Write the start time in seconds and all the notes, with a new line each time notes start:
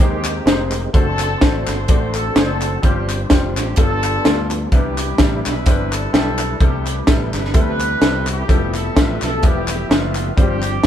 Already playing: G#3 C4 D#4 G4 A#4
0.00 D#2 G#3 A#3 C4 D#4 G4 C5
0.24 clap, closed hi-hat
0.45 F1 G#3 C4 D#4 G4 C5, snare, closed hi-hat
0.72 clap, closed hi-hat
0.93 F#1 A3 C4 D4 F4 F#4 A4 C5, kick, closed hi-hat
0.99 F#4
1.19 clap, closed hi-hat
1.41 A1 A3 C4 D4 F#4 C5, kick, snare, closed hi-hat
1.67 G1 A4 C5, snare, clap, closed hi-hat
1.88 A1 A3 C4 D4 F#4 D5, kick, closed hi-hat
2.14 A4, clap, closed hi-hat
2.36 F#1 A3 C4 D4 F#4 A4 C5, snare, closed hi-hat
2.61 clap, closed hi-hat
2.82 G1 G2 G3 C4 D4 F4 G4 B4 C5, kick, closed hi-hat
2.89 C5
3.09 clap, closed hi-hat
3.30 F1 G3 C4 D4 F4 G4, kick, snare, closed hi-hat
3.57 A1 G4, snare, clap, closed hi-hat
3.76 G1 G2 G3 B3 D4 F4 A4, kick, closed hi-hat
4.04 clap, closed hi-hat
4.24 D2 G3 B3 D4 F4 A4, snare, closed hi-hat
4.51 clap, closed hi-hat
4.72 C2 C3 G3 B3 D4 E4 G4 A4 B4, kick, closed hi-hat
4.79 B4
4.98 clap, closed hi-hat
5.18 A1 C3 G3 D4 E4 G4, kick, snare, closed hi-hat
5.45 B1 D4 E4 B4, snare, clap, closed hi-hat
5.66 G1 G3 C4 D4 E4 B4, kick, closed hi-hat
5.93 A4, clap, closed hi-hat
6.13 B1 G3 C4 D4 E4 G4 A4, snare, closed hi-hat
6.39 clap, closed hi-hat
6.60 C2 C3 G3 A3 B3 E4 G4 A4 B4, kick, closed hi-hat
6.86 clap, closed hi-hat
7.07 A1 C3 G3 B3 E4 A4, kick, snare, closed hi-hat
7.33 G1 B4, snare, clap, closed hi-hat
7.45 snare
7.54 D2 G3 B3 C4 E4 G4 A4 B4, kick, closed hi-hat
7.80 clap, closed hi-hat
8.01 C2 G3 B3 C4 E4 A4, snare, closed hi-hat
8.27 B3 E4 G4, clap, closed hi-hat
8.48 F1 F3 G3 A3 B3 E4 G4 A4 E5, kick, closed hi-hat
8.74 A4, clap, closed hi-hat
8.95 A1 G3 B3 E4 F4 A4 B4, kick, snare, closed hi-hat
9.22 B1 A4, snare, clap, closed hi-hat
9.43 E1 F3 G3 B3 E4 G4 B4, kick, closed hi-hat
9.68 clap, closed hi-hat
9.89 F#1 F3 G3 A3 B3 F4 B4 E5, snare, closed hi-hat
10.15 clap, closed hi-hat
10.37 G1 G2 F3 G3 C4 D4 F4 G4 C5, kick, closed hi-hat
10.62 clap, closed hi-hat
10.83 G3, snare, closed hi-hat